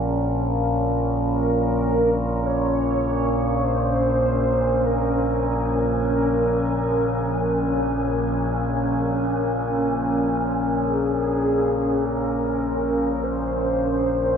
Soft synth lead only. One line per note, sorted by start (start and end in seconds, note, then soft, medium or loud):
1.27 2.48 A#4 loud
2.46 3.66 C#5 loud
3.64 4.87 C5 loud
4.86 6.03 A#4 medium
6.04 9.00 A#4 medium
10.85 12.06 G#4 medium
12.05 13.25 A#4 medium
13.23 14.37 C5 loud